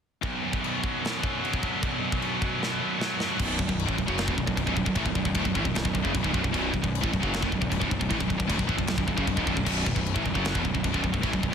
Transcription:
0.22 distorted electric guitar B1, kick, china
0.43 distorted electric guitar F#2
0.53 kick
0.62 distorted electric guitar B2, china
0.82 distorted electric guitar F#2 F#3, kick
1.02 distorted electric guitar F#2 B2, china
1.06 snare
1.22 distorted electric guitar F#2 B2, kick
1.42 distorted electric guitar F#3, china
1.53 kick
1.61 distorted electric guitar B2 D4, kick
1.81 distorted electric guitar B1, kick, china
2.01 distorted electric guitar F#2
2.12 kick
2.20 distorted electric guitar B2, china
2.39 distorted electric guitar F#2 F#3, kick
2.60 distorted electric guitar F#2 B2, snare
2.79 distorted electric guitar F#2 B2
3.00 distorted electric guitar F#3, snare
3.18 distorted electric guitar B2 D4, snare
3.38 picked electric bass B0, distorted electric guitar B1 F#2 B2, kick, crash, china
3.58 picked electric bass B0, distorted electric guitar B1 F#2, kick
3.67 picked electric bass B0, distorted electric guitar B1 F#2, kick
3.79 china
3.86 picked electric bass A1, distorted electric guitar A2 E3, kick
3.95 picked electric bass B0, distorted electric guitar B1 F#2, kick
4.06 picked electric bass F#1, distorted electric guitar F#2 C#3 F#3, kick
4.18 snare, china
4.26 picked electric bass E1, distorted electric guitar E2 B2, kick
4.36 picked electric bass B0, distorted electric guitar B1 F#2, kick
4.47 picked electric bass B0, distorted electric guitar B1 F#2, kick
4.57 picked electric bass B0, distorted electric guitar B1 F#2, kick, china
4.67 picked electric bass B0, distorted electric guitar B1 F#2, kick
4.76 picked electric bass B0, distorted electric guitar B1 F#2, kick
4.85 picked electric bass B0, distorted electric guitar B1 F#2, kick
4.95 picked electric bass A1, distorted electric guitar A2 E3, kick, china
5.06 picked electric bass B0, distorted electric guitar B1 F#2, kick
5.15 picked electric bass B0, distorted electric guitar B1 F#2, kick
5.25 picked electric bass B0, distorted electric guitar B1 F#2, kick
5.34 picked electric bass D1, distorted electric guitar D2 A2, kick, china
5.44 picked electric bass B0, distorted electric guitar B1 F#2, kick
5.54 picked electric bass A1, distorted electric guitar A2 E3, kick
5.64 picked electric bass B0, distorted electric guitar B1 F#2, kick
5.74 picked electric bass B0, distorted electric guitar B1 F#2, snare, china
5.84 picked electric bass B0, distorted electric guitar B1 F#2, kick
5.93 picked electric bass B0, distorted electric guitar B1 F#2, kick
6.02 picked electric bass F#1, distorted electric guitar F#2 C#3, kick
6.13 picked electric bass B0, distorted electric guitar B1 F#2, kick, china
6.23 picked electric bass C#1, distorted electric guitar C#2 G#2, kick
6.32 picked electric bass B0, distorted electric guitar B1 F#2, kick
6.43 picked electric bass B0, distorted electric guitar B1 F#2, kick
6.51 picked electric bass B0, distorted electric guitar B1 F#2 B2, kick, china
6.71 picked electric bass B0, distorted electric guitar B1 F#2, kick
6.83 picked electric bass B0, distorted electric guitar B1 F#2, kick
6.95 china
7.01 picked electric bass A1, distorted electric guitar A2 E3, kick
7.10 picked electric bass B0, distorted electric guitar B1 F#2, kick
7.20 picked electric bass F#1, distorted electric guitar F#2 C#3 F#3, kick
7.34 snare, china
7.40 picked electric bass E1, distorted electric guitar E2 B2, kick
7.51 picked electric bass B0, distorted electric guitar B1 F#2, kick
7.61 picked electric bass B0, distorted electric guitar B1 F#2, kick
7.70 picked electric bass B0, distorted electric guitar B1 F#2, kick, china
7.80 picked electric bass B0, distorted electric guitar B1 F#2, kick
7.90 picked electric bass B0, distorted electric guitar B1 F#2, kick
8.00 picked electric bass B0, distorted electric guitar B1 F#2, kick
8.10 picked electric bass A1, distorted electric guitar A2 E3, kick, china
8.18 picked electric bass B0, distorted electric guitar B1 F#2, kick
8.28 picked electric bass B0, distorted electric guitar B1 F#2, kick
8.38 picked electric bass B0, distorted electric guitar B1 F#2, kick
8.47 picked electric bass D1, distorted electric guitar D2 A2, kick, china
8.57 picked electric bass B0, distorted electric guitar B1 F#2, kick
8.67 picked electric bass A1, distorted electric guitar A2 E3, kick
8.78 picked electric bass B0, distorted electric guitar B1 F#2, kick
8.87 picked electric bass B0, distorted electric guitar B1 F#2, snare, china
8.98 picked electric bass B0, distorted electric guitar B1 F#2, kick
9.08 picked electric bass B0, distorted electric guitar B1 F#2, kick
9.16 picked electric bass F#1, distorted electric guitar F#2 C#3, kick
9.27 picked electric bass B0, distorted electric guitar B1 F#2, kick, china
9.36 picked electric bass C#1, distorted electric guitar C#2 G#2, kick
9.46 picked electric bass B0, distorted electric guitar B1 F#2, kick
9.55 picked electric bass B0, distorted electric guitar B1 F#2, kick
9.65 picked electric bass B0, distorted electric guitar B1 F#2 B2, kick, china, crash
9.85 picked electric bass B0, distorted electric guitar B1 F#2, kick
9.95 picked electric bass B0, distorted electric guitar B1 F#2, kick
10.06 china
10.14 picked electric bass A1, distorted electric guitar A2 E3, kick
10.25 picked electric bass B0, distorted electric guitar B1 F#2, kick
10.34 picked electric bass F#1, distorted electric guitar F#2 C#3 F#3, kick
10.45 snare, china
10.54 picked electric bass E1, distorted electric guitar E2 B2, kick
10.64 picked electric bass B0, distorted electric guitar B1 F#2, kick
10.73 picked electric bass B0, distorted electric guitar B1 F#2, kick
10.83 picked electric bass B0, distorted electric guitar B1 F#2, kick, china
10.92 picked electric bass B0, distorted electric guitar B1 F#2, kick
11.04 picked electric bass B0, distorted electric guitar B1 F#2, kick
11.12 picked electric bass B0, distorted electric guitar B1 F#2, kick
11.20 picked electric bass A1, distorted electric guitar A2 E3, kick, china
11.25 overdriven electric guitar E3
11.31 picked electric bass B0, distorted electric guitar B1 F#2, kick
11.40 picked electric bass B0, distorted electric guitar B1 F#2, kick
11.50 distorted electric guitar B1 F#2

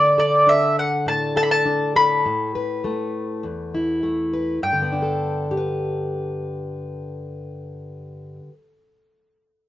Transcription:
Already playing: steel-string acoustic guitar D3, mandolin D5
0.18 steel-string acoustic guitar A4, mandolin D5
0.47 steel-string acoustic guitar D4, mandolin E5
0.79 mandolin F#5
1.06 steel-string acoustic guitar A2, mandolin A5
1.36 steel-string acoustic guitar A4, mandolin A5
1.43 mandolin B5
1.51 mandolin A5
1.66 steel-string acoustic guitar D4
1.96 steel-string acoustic guitar A4, mandolin B5
2.25 steel-string acoustic guitar A2
2.55 steel-string acoustic guitar B4
2.84 steel-string acoustic guitar A3
3.43 steel-string acoustic guitar E2
3.75 steel-string acoustic guitar E4
4.03 steel-string acoustic guitar A3
4.33 steel-string acoustic guitar B4
4.62 steel-string acoustic guitar G2, mandolin G5
4.73 steel-string acoustic guitar D3
4.82 steel-string acoustic guitar B3
4.92 steel-string acoustic guitar D4
5.02 steel-string acoustic guitar A4
5.51 steel-string acoustic guitar G4
5.57 steel-string acoustic guitar B4

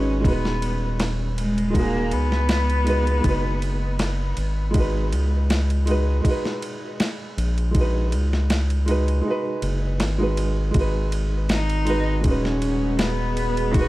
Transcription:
Already playing: analog synth bass G#1, upright piano G#3 D#4 F#4 B4, cello C#4
0.21 upright piano G#3 D#4, kick
0.25 analog synth bass D#1, cello B3, upright piano F#4, ride
0.30 upright piano B4
0.45 snare
0.62 ride
1.00 snare, ride
1.38 cello G#3, ride
1.58 ride
1.70 upright piano G#3 D#4, cello A#3
1.74 upright piano F#4, kick, ride
1.80 upright piano G#4
2.11 analog synth bass C#2, cello B3, ride
2.32 snare
2.49 snare, ride
2.70 ride
2.84 upright piano G#3 D#4 F#4, ride
2.89 upright piano B4
3.07 ride
3.21 analog synth bass F#1, upright piano G#3 D#4, kick, ride
3.27 upright piano F#4 B4
3.62 ride
3.99 snare, ride
4.37 analog synth bass G#1, ride
4.71 upright piano G#3 D#4, kick, ride
4.77 upright piano F#4 B4
5.12 analog synth bass C#2, ride
5.50 snare, ride
5.70 ride
5.86 upright piano G#3 D#4 F#4, ride
5.91 upright piano B4
6.22 upright piano G#3 D#4, kick, ride
6.27 upright piano F#4 B4
6.45 snare
6.62 ride
7.00 snare, ride
7.38 analog synth bass A#1, ride
7.58 ride
7.71 upright piano G#3 D#4, kick, ride
7.78 upright piano F#4 B4
8.12 analog synth bass C#2, ride
8.33 snare
8.50 snare, ride
8.70 ride
8.86 upright piano G#3 D#4 F#4, ride
8.91 upright piano B4
9.08 ride
9.21 upright piano G#3 D#4
9.28 upright piano F#4 B4
9.62 analog synth bass F#1, ride
10.00 analog synth bass G#1, snare, ride
10.18 upright piano G#3 D#4 F#4
10.23 upright piano B4
10.37 ride
10.71 upright piano G#3 D#4, kick, ride
10.75 analog synth bass G#1, upright piano F#4, ambient pad G#4 F#5 B5 D#6
10.80 upright piano B4
11.12 ride
11.49 cello D#4, snare, ride
11.70 ride
11.85 upright piano G#3 D#4 F#4, ride
11.90 upright piano B4
12.21 analog synth bass D#1, upright piano G#3 D#4, cello C#4, kick, ride
12.27 upright piano F#4 B4
12.45 snare
12.62 ride
12.99 cello B3, snare, ride
13.37 ride
13.57 ride
13.72 upright piano G#3 D#4, cello F#4, kick, ride
13.78 upright piano F#4 B4

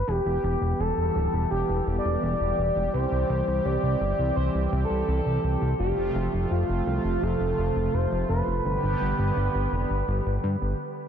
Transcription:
0.08 analog synth bass E1, analog synth pad E3 G3 B3 G4, analog synth lead G4
0.26 analog synth bass E1
0.43 analog synth bass E1
0.61 analog synth bass E1
0.79 analog synth bass E1, analog synth lead A4
0.97 analog synth bass E1
1.15 analog synth bass D1
1.33 analog synth bass E1
1.51 analog synth bass E1, analog synth lead G4
1.69 analog synth bass E1
1.87 analog synth bass E1
1.98 analog synth lead D5
2.05 analog synth bass E1
2.22 analog synth bass E1
2.40 analog synth bass E1
2.58 analog synth bass E1
2.76 analog synth bass E1
2.93 analog synth bass C2, analog synth pad E3 C4, analog synth lead C5
3.12 analog synth bass C2
3.29 analog synth bass C2
3.47 analog synth bass C2
3.65 analog synth bass C2, analog synth lead D5
3.83 analog synth bass C2
4.01 analog synth bass G1
4.19 analog synth bass C2
4.36 analog synth bass C2, analog synth lead C5
4.54 analog synth bass C2
4.72 analog synth bass C2
4.84 analog synth lead A4
4.90 analog synth bass C2
5.08 analog synth bass C2
5.26 analog synth bass C2
5.44 analog synth bass C2
5.61 analog synth bass C2
5.79 analog synth bass F1, analog synth pad C3 F3 A3 F4, analog synth lead G4
5.97 analog synth bass F1
6.15 analog synth bass F1
6.33 analog synth bass F1
6.51 analog synth bass F1, analog synth lead F4
6.69 analog synth bass F1
6.87 analog synth bass C2
7.05 analog synth bass F1
7.22 analog synth bass F1, analog synth lead A4
7.40 analog synth bass F1
7.58 analog synth bass F1
7.76 analog synth bass F1
7.93 analog synth bass F1, analog synth lead C5
8.11 analog synth bass F1
8.29 analog synth bass F1, analog synth lead B4
8.47 analog synth bass F1
8.64 analog synth bass G1, analog synth pad D3 G3 B3 G4
8.83 analog synth bass G1
9.01 analog synth bass G1
9.19 analog synth bass G1
9.36 analog synth bass G1
9.54 analog synth bass G1
9.72 analog synth bass F1
9.90 analog synth bass G1
10.08 analog synth bass G1
10.26 analog synth bass G1
10.44 analog synth bass G2
10.61 analog synth bass G1

